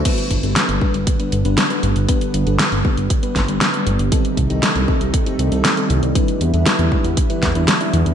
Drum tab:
CC |x---------------|----------------|----------------|----------------|
HH |xxxxxx-xxxxxxxxx|xxxxxx-xxxxxxxxx|xxxxxx-xxxxxxxxx|xxxxxx-xxxxxxxxx|
SD |----o-------o---|----o-----o-o---|----o-------o---|----o-----o-o---|
BD |o-o---o-o-------|o-----o-o-o-----|o-o---o-o-------|o-----o-o-o-----|